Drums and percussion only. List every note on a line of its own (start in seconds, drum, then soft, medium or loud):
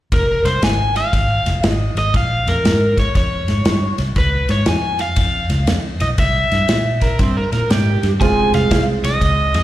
0.12 kick medium
0.12 snare soft
0.12 ride medium
0.45 snare soft
0.45 ride medium
0.62 snare medium
0.62 ride medium
0.96 snare soft
0.96 ride medium
1.13 kick medium
1.13 snare soft
1.13 ride medium
1.46 snare soft
1.46 ride medium
1.64 snare loud
1.64 ride medium
1.97 snare soft
1.97 ride medium
2.14 kick medium
2.14 snare soft
2.14 ride medium
2.48 snare soft
2.48 ride medium
2.65 snare medium
2.65 ride medium
2.98 kick medium
2.98 snare soft
2.98 ride medium
3.15 kick medium
3.15 snare soft
3.15 ride medium
3.48 snare soft
3.48 ride soft
3.65 snare loud
3.65 ride medium
3.98 snare soft
3.98 ride medium
4.16 kick medium
4.16 snare soft
4.16 ride medium
4.49 snare soft
4.49 ride medium
4.66 snare medium
4.66 ride medium
4.99 snare soft
4.99 ride medium
5.16 kick medium
5.16 snare soft
5.16 ride medium
5.50 snare soft
5.50 ride medium
5.67 snare medium
5.67 ride medium
6.00 snare soft
6.00 ride medium
6.18 kick medium
6.18 snare soft
6.18 ride medium
6.51 snare soft
6.51 ride soft
6.69 snare medium
6.69 ride medium
7.01 kick medium
7.01 snare soft
7.01 ride medium
7.19 kick medium
7.19 snare soft
7.19 ride medium
7.52 snare soft
7.52 ride soft
7.70 snare medium
7.70 ride medium
8.03 snare soft
8.03 ride soft
8.21 kick medium
8.21 snare soft
8.21 ride medium
8.54 snare soft
8.54 ride medium
8.71 kick medium
8.71 snare loud
8.71 ride medium
9.04 snare soft
9.04 ride medium
9.21 kick medium
9.21 snare soft
9.21 ride medium
9.54 snare soft
9.54 ride medium